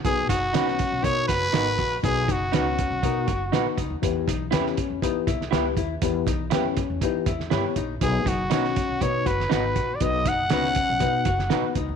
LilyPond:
<<
  \new Staff \with { instrumentName = "Trumpet" } { \time 4/4 \key b \major \tempo 4 = 120 gis'8 fis'4. cis''8 b'4. | gis'8 fis'2. r8 | r1 | r1 |
gis'8 fis'4. cis''8 b'4~ b'16. d''32 | dis''8 fis''2. r8 | }
  \new Staff \with { instrumentName = "Clean electric guitar" } { \time 4/4 \key b \major r4 <dis' fis' b'>16 r4. r16 <dis' fis' b'>16 r8. | r4 <dis' fis' b'>16 r4. r16 <dis' fis' b'>16 r8. | r4 <e' g' b'>16 r4. r16 <e' g' b'>16 r8. | r4 <e' g' b'>16 r4. r16 <e' g' b'>16 r8. |
r4 <dis' fis' b'>16 r4. r16 <dis' fis' b'>16 r8. | r4 <dis' fis' b'>16 r4. r16 <dis' fis' b'>16 r8. | }
  \new Staff \with { instrumentName = "Reed electric piano" } { \time 4/4 \key b \major <b dis' fis' b'>8 r8 <b dis' fis' b'>8 r8 <b dis' fis' ais'>8 r8 <b dis' fis' ais'>8 r8 | <b dis' fis' b'>8 r8 <b dis' fis' b'>8 r8 <b dis' fis' ais'>8 r8 <b dis' fis' b'>8 r8 | <b e' g' b'>8 r8 <b e' g' b'>8 r8 <b e' g' b'>8 r8 <b e' g' b'>8 r8 | <b e' g' b'>8 r8 <b e' g' b'>8 r8 <b e' g' b'>8 r8 <b e' g' cis''>8 r8 |
<b dis' fis' b'>8 r8 <b dis' fis' cis''>8 r8 <b dis' fis' b'>8 r8 <b dis' fis' b'>8 r8 | <b dis' fis' b'>8 r8 <b dis' fis' b'>8 r8 <b dis' fis' b'>8 r8 <b dis' fis' b'>8 r8 | }
  \new Staff \with { instrumentName = "Reed electric piano" } { \clef bass \time 4/4 \key b \major b,4. r2 r8 | b,4. r2 r8 | e4. r2 r8 | e4. r2 r8 |
b,4. r2 r8 | b,4. r2 r8 | }
  \new Staff \with { instrumentName = "Hollow-body jazz guitar" } { \time 4/4 \key b \major r8 dis'8 cis'4 dis'8 fis'8 r8 fis'8 | r8 dis'8 cis'4 dis'8 fis'8 r8 dis'8 | r8 dis'8 cis'4 dis'8 e'8 r8 e'8 | r8 dis'8 cis'4 dis'8 e'8 r8 dis'8 |
r8 dis'8 cis'4 dis'8 fis'8 r8 fis'8 | r8 dis'8 cis'4 dis'8 fis'8 r8 dis'8 | }
  \new Staff \with { instrumentName = "Upright bass" } { \clef bass \time 4/4 \key b \major b,,8 fis,,8 b,,8. b,,16 b,8 fis,,8 gis,,8 ais,,8 | b,,8 fis,,8 cis,8. b,,16 b,8 fis,,8 ais,,16 r16 cis,16 dis,16 | e,8 b,,8 e,8. e,16 e8 b,,8 cis,8 dis,8 | e,8 b,,8 fis,8. e,16 e8 e,8 g,16 r16 ais,,8 |
b,,8 fis,,8 r8. b,,16 b,8 fis,,8 gis,,8 ais,,8 | b,,8 fis,,8 cis,8. b,,16 b,8 fis,,8 r8 cis,16 dis,16 | }
  \new DrumStaff \with { instrumentName = "Drums" } \drummode { \time 4/4 <hh bd>8 <hh bd>8 <hh sn>16 sn16 <hh bd>8 <hh bd>8 <hh bd>8 <hh sn>8 <hho bd>8 | <hh bd>8 <hh bd>8 <hh sn>8 <hh bd>8 <hh bd>8 <hh bd>8 <hh sn>8 <hh bd>8 | <hh bd>8 <hh bd>8 <hh sn>16 sn16 <hh bd>8 <hh bd>8 <hh bd>16 sn16 <hh sn>8 <hh bd>8 | <hh bd>8 <hh bd>8 <hh sn>8 <hh bd>8 <hh bd>8 <hh bd>16 sn16 <hh sn>8 <hh bd>8 |
<hh bd>8 <hh bd>8 <hh sn>16 sn16 <hh bd>8 <hh bd>8 <hh bd>16 sn16 <hh sn>8 <hh bd>8 | <hh bd>8 <hh bd>8 <hh sn>16 sn16 <hh bd>8 <hh bd>8 <hh bd>16 sn16 <hh sn>8 <hh bd>8 | }
>>